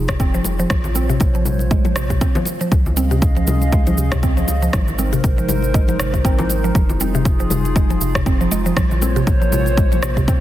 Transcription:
Already playing: sub bass F1, analog synth pad D#4 F4 G#4
0.08 synth pluck C3, kick, cross-stick, muted conga, shaker
0.20 synth pluck C4, kick, shaker
0.34 synth pluck F3, shaker
0.44 sub bass F1, muted conga, shaker
0.59 synth pluck F3, shaker
0.70 sub bass A#1, synth pluck F3, analog synth pad A#3 C5 C#5, kick, cross-stick, muted conga, high conga, shaker
0.84 low conga, shaker
0.94 synth pluck C4, muted conga, high conga, shaker
1.09 synth pluck C3, shaker
1.20 sub bass A#1, kick, muted conga, shaker
1.35 synth pluck F3, shaker
1.45 synth pluck C3, high conga, shaker
1.59 muted conga, shaker
1.71 synth pluck G#3, kick, shaker
1.85 synth pluck F3, muted conga, high conga, shaker
1.96 synth pluck C3, cross-stick, shaker
2.10 synth pluck C3, kick, muted conga, shaker
2.21 synth pluck C4, kick, shaker
2.35 synth pluck F3, low conga, shaker
2.45 muted conga, shaker
2.61 synth pluck F3, shaker
2.71 sub bass C#2, synth pluck F3, analog synth pad C#4 G#4 D#5 F5, kick, muted conga, shaker
2.86 low conga, shaker
2.96 synth pluck C4, muted conga, high conga, shaker
3.11 synth pluck C3, shaker
3.22 kick, muted conga, shaker
3.36 synth pluck F3, shaker
3.47 synth pluck C3, high conga, shaker
3.62 muted conga, shaker
3.72 synth pluck G#3, kick, shaker
3.87 synth pluck F3, muted conga, high conga, shaker
3.98 synth pluck C3, shaker
4.12 synth pluck C3, kick, cross-stick, shaker
4.23 synth pluck C4, kick, shaker
4.37 synth pluck F3, shaker
4.48 sub bass C#2, muted conga, shaker
4.62 synth pluck F3, shaker
4.73 sub bass G#1, synth pluck F3, analog synth pad G#3 D#4 A#4 C5, kick, cross-stick, muted conga, high conga, shaker
4.88 low conga, shaker
4.99 synth pluck C4, muted conga, high conga, shaker
5.13 synth pluck C3, shaker
5.24 sub bass G#1, kick, muted conga, shaker
5.38 synth pluck F3, shaker
5.49 synth pluck C3, high conga, shaker
5.62 muted conga, shaker
5.74 synth pluck G#3, kick, shaker
5.88 synth pluck F3, muted conga, high conga, shaker
6.00 sub bass G#1, synth pluck C3, cross-stick, shaker
6.14 synth pluck C3, kick, muted conga, shaker
6.25 synth pluck C4, kick, shaker
6.38 synth pluck F3, low conga, shaker
6.49 muted conga, shaker
6.64 synth pluck F3, shaker
6.75 sub bass F1, synth pluck F3, analog synth pad F4 G#4, kick, muted conga, shaker
6.89 low conga, shaker
7.00 synth pluck C4, muted conga, high conga, shaker
7.15 synth pluck C3, shaker
7.25 kick, muted conga, shaker
7.40 synth pluck F3, shaker
7.50 synth pluck C3, high conga, shaker
7.65 muted conga, shaker
7.76 synth pluck G#3, kick, shaker
7.90 synth pluck F3, muted conga, high conga, shaker
8.01 synth pluck C3, shaker
8.15 synth pluck C3, kick, cross-stick, muted conga, shaker
8.26 synth pluck C4, kick, shaker
8.41 synth pluck F3, shaker
8.51 sub bass F1, synth pluck G#3, muted conga, shaker
8.66 synth pluck F3, shaker
8.76 sub bass A#1, synth pluck F3, analog synth pad A#3 C5 C#5, kick, cross-stick, muted conga, high conga, shaker
8.91 low conga, shaker
9.01 synth pluck C4, muted conga, high conga, shaker
9.16 synth pluck C3, shaker
9.27 sub bass A#1, kick, muted conga, shaker
9.42 synth pluck F3, shaker
9.52 synth pluck C3, high conga, shaker
9.66 muted conga, shaker
9.77 synth pluck G#3, kick, shaker
9.92 synth pluck F3, muted conga, high conga, shaker
10.03 synth pluck C3, cross-stick, shaker
10.17 synth pluck C3, kick, muted conga, shaker
10.28 synth pluck C4, kick, shaker

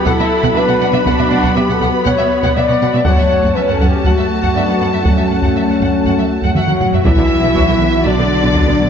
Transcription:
Already playing: trombone section F#3 B3, analog synth pad F#3 B3 F#4 F#5, grand piano B5 D6, violin section B5
0.06 cello section B2, viola section E4, french horn section A4, violin section F#5, taiko
0.19 cello section B2, violin section E5
0.43 cello section B2, violin section F#5, taiko
0.56 cello section B2, viola section D4, french horn section B4, violin section E5
0.69 cello section B2, violin section F#5
0.80 cello section B2, violin section F#5
0.93 cello section B2, violin section E5
1.05 cello section B2, viola section D4, french horn section F#4, violin section F#5, taiko
1.19 cello section B2, violin section E5
1.31 cello section B2, violin section F#5
1.43 cello section B2, violin section F#5, taiko
1.56 cello section B2, viola section B3, french horn section G4, violin section E5, grand piano D6
1.69 cello section B2, violin section F#5
1.73 french horn section A4
1.81 cello section B2, violin section F#5, taiko
1.90 french horn section B4
2.06 cello section B2, french horn section C#5, violin section F#5, taiko
2.19 cello section B2, violin section E5
2.43 cello section B2, violin section F#5, taiko
2.56 cello section B2, french horn section D5, violin section E5
2.68 cello section B2, violin section F#5
2.81 cello section B2, violin section F#5
2.94 cello section B2, violin section E5
3.05 cello section F#2, analog synth pad F#3 A3 F#4 F#5, trombone section F#3 A3, viola section A3, french horn section C#5, grand piano F#5, violin section F#5 A5, taiko
3.19 cello section F#2, violin section E5
3.31 cello section F#2, violin section F#5
3.42 cello section F#2, violin section F#5, taiko
3.55 cello section F#2, viola section C#4, french horn section B4, violin section E5
3.68 cello section F#2, french horn section A4, violin section F#5
3.80 cello section F#2, violin section F#5, taiko
3.88 french horn section G4
4.04 cello section F#2, viola section A3, french horn section F#4, violin section F#5, taiko
4.18 cello section F#2, violin section E5
4.42 cello section F#2, violin section F#5, taiko
4.55 cello section F#2, viola section B3, grand piano D4 D5, violin section E5
4.68 cello section F#2, violin section F#5
4.81 cello section F#2, violin section F#5
4.93 cello section F#2, violin section E5
5.04 cello section F#2, viola section A3, french horn section C#4, violin section F#5, taiko
5.17 cello section F#2, violin section E5
5.31 cello section F#2, violin section F#5
5.42 cello section F#2, violin section F#5, taiko
5.55 cello section F#2, violin section E5
5.69 cello section F#2, violin section F#5
5.80 cello section F#2, violin section F#5, taiko
6.05 cello section F#2, violin section F#5, taiko
6.18 cello section F#2, violin section E5
6.43 cello section F#2, violin section F#5, taiko
6.54 cello section F#2 F#3, french horn section F#4, violin section E5 F#5, taiko mid
6.68 cello section F#2, violin section F#5, taiko mid
6.80 cello section F#2, violin section F#5, taiko low-mid
6.93 cello section F#2, violin section E5, taiko low
7.04 detuned saw bass B1, double bass section B1, cello section E3, viola section F#3 D4, analog synth pad F#3 B3 F#4 F#5, trombone section F#3 B3, french horn section E4, violin section E5, taiko
7.18 double bass section B1, viola section D3 B3
7.43 double bass section B1, viola section D3 B3
7.55 double bass section B1, viola section F#3 D4, grand piano C#6, taiko
7.68 double bass section B1, viola section D3 B3
7.81 double bass section B1, viola section D3 F#3
8.05 double bass section B1, cello section D3, viola section F#3 D4, french horn section D4, violin section D5
8.18 double bass section B1, viola section D3 B3
8.43 double bass section B1, viola section D3 B3
8.55 double bass section B1, viola section F#3 D4, taiko
8.67 double bass section B1, viola section D3 B3
8.80 double bass section B1, viola section D3 F#3

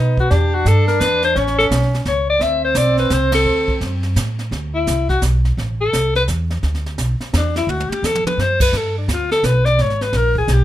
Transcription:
Already playing: upright bass B2, tenor saxophone B3, alto saxophone D#4
0.17 alto saxophone F#4, kick
0.30 upright bass E2, tenor saxophone D4, alto saxophone G4, brush sweep, kick, snare
0.54 alto saxophone F#4
0.65 upright bass G2, alto saxophone A4, kick, snare, hi-hat pedal
0.88 alto saxophone A#4, snare
1.00 upright bass E2, alto saxophone B4, kick, snare, hi-hat pedal
1.23 alto saxophone C5, snare
1.35 upright bass A1, tenor saxophone C#4, alto saxophone C#5, brush sweep, kick, snare
1.47 snare
1.59 alto saxophone A4, snare
1.70 upright bass B1, kick, snare, hi-hat pedal
1.83 snare
1.94 snare
2.05 upright bass C#2, alto saxophone C#5, kick, snare
2.30 alto saxophone D5
2.39 upright bass D2, tenor saxophone C4, alto saxophone E5, brush sweep, kick, snare
2.64 alto saxophone C5
2.74 upright bass B1, alto saxophone D5, kick, snare, hi-hat pedal
2.98 alto saxophone B4, snare
3.10 upright bass C2, alto saxophone C5, kick, snare, hi-hat pedal
3.32 alto saxophone A4, snare, ride
3.45 upright bass D2, brush sweep
3.68 kick
3.81 upright bass F#2, kick, snare
4.03 snare
4.16 upright bass A2, kick, snare, hi-hat pedal
4.39 snare
4.51 upright bass D2, brush sweep, kick, snare
4.75 alto saxophone E4
4.87 upright bass C2, kick, snare, hi-hat pedal
5.09 alto saxophone F#4, kick, snare
5.22 upright bass B1, kick, snare, hi-hat pedal
5.45 snare
5.57 upright bass A1, brush sweep, kick, snare
5.81 alto saxophone A4
5.93 upright bass C2, kick, snare, hi-hat pedal
6.15 alto saxophone B4, snare
6.28 upright bass E2, kick, snare, hi-hat pedal
6.50 snare
6.63 upright bass D2, brush sweep, kick, snare
6.75 snare
6.86 snare
6.98 upright bass B1, kick, snare, hi-hat pedal
7.20 muted upright bass stroke, snare
7.33 upright bass E2, kick, snare, hi-hat pedal
7.37 alto saxophone D4
7.56 alto saxophone E4, snare
7.67 upright bass D2, alto saxophone F#4, high tom
7.80 high tom
7.90 alto saxophone G4, muted upright bass stroke, high tom
8.02 upright bass E2, alto saxophone A4, snare, hi-hat pedal
8.15 mid tom
8.24 alto saxophone B4, muted upright bass stroke, mid tom
8.37 upright bass F#2, alto saxophone C5, snare
8.60 alto saxophone B4, kick, crash
8.73 upright bass G2, brush sweep, kick, snare
8.77 alto saxophone A4
8.98 alto saxophone D4
9.08 upright bass D2, kick, snare, hi-hat pedal
9.13 alto saxophone F4
9.31 alto saxophone A4, snare
9.43 upright bass B1, alto saxophone B4, kick, snare, hi-hat pedal
9.65 alto saxophone D5, snare
9.78 upright bass G#1, alto saxophone C#5, brush sweep, kick, snare
9.90 snare
10.01 alto saxophone B4, snare
10.13 upright bass A#1, alto saxophone A#4, kick, snare
10.35 alto saxophone G#4, kick
10.48 upright bass B1, kick, snare, hi-hat pedal
10.53 alto saxophone G4

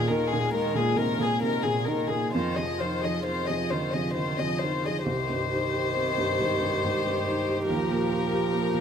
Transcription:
Already playing: felt piano D#2 A#2, cello A#2, violin section G#4, viola G#4
0.09 cello D#3, felt piano D#4, violin section A#4, viola A#4
0.31 cello A#2, violin section G#4, viola G#4, felt piano A#4
0.53 cello D#3, felt piano G#3, viola A#4, violin section A#4
0.75 felt piano A#2, cello A#2, viola G#4, violin section G#4
0.96 felt piano C3, cello D#3, viola A#4, violin section A#4
1.18 felt piano A#2, cello A#2, violin section G#4, viola G#4
1.42 felt piano C3, cello D#3, violin section A#4, viola A#4
1.63 felt piano A#2, cello A#2, violin section G#4, viola G#4
1.86 cello D#3, felt piano D#4, violin section A#4, viola A#4
2.08 cello A#2, violin section G#4, viola G#4, felt piano A#4
2.33 felt piano F2, cello D#3, viola F4, violin section C5
2.55 felt piano C3, cello F3, viola G#4, violin section D#5
2.79 cello D#3, felt piano D#4, viola F4, violin section C5
3.01 cello F3, viola G#4, felt piano G#4, violin section D#5
3.24 cello D#3, felt piano C4, viola F4, violin section C5
3.47 felt piano C3, cello F3, viola G#4, violin section D#5
3.71 felt piano D3, cello D#3, viola F4, violin section C5
3.91 felt piano C3, cello F3, viola G#4, violin section D#5
4.15 felt piano D3, cello D#3, viola F4, violin section C5
4.38 felt piano C3, cello F3, viola G#4, violin section D#5
4.60 cello D#3, felt piano D#4, viola F4, violin section C5
4.84 cello F3, viola G#4, felt piano G#4, violin section D#5
5.06 felt piano C2, cello D#3, viola G4, violin section C5
5.30 felt piano G2
5.51 felt piano D#4
5.74 felt piano G4
5.96 felt piano C4
6.18 felt piano G2
6.40 felt piano G#2
6.60 felt piano G2
6.84 felt piano G#2
7.06 felt piano G2
7.27 felt piano D#4
7.49 felt piano G4
7.67 felt piano D#2, cello F3, violin section A#4
7.90 felt piano A#2
8.11 felt piano F4
8.32 felt piano G4
8.53 felt piano A#3
8.74 felt piano A#2

